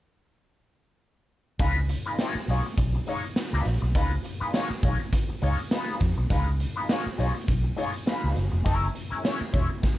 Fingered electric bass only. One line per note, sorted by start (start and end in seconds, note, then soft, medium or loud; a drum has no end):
1.60 1.93 C#2 medium
2.35 muted fingered electric bass stroke medium
2.48 2.60 B1 medium
2.78 2.99 B1 medium
3.53 3.62 C#2 medium
3.66 3.78 A#1 medium
3.82 3.95 B1 medium
3.95 4.17 C#2 medium
4.41 muted fingered electric bass stroke soft
4.70 muted fingered electric bass stroke soft
4.83 4.95 B1 medium
5.29 muted fingered electric bass stroke soft
5.42 5.54 C#2 medium
6.01 6.13 F2 medium
6.18 6.27 B1 medium
6.30 6.64 C#2 loud
7.06 muted fingered electric bass stroke soft
7.19 7.31 B1 medium
7.48 7.70 B1 medium
8.24 8.33 C#2 medium
8.37 8.48 F#1 medium
8.53 8.62 F1 medium
8.66 8.87 F#1 medium
9.12 muted fingered electric bass stroke soft
9.41 muted fingered electric bass stroke medium
9.54 9.66 E1 medium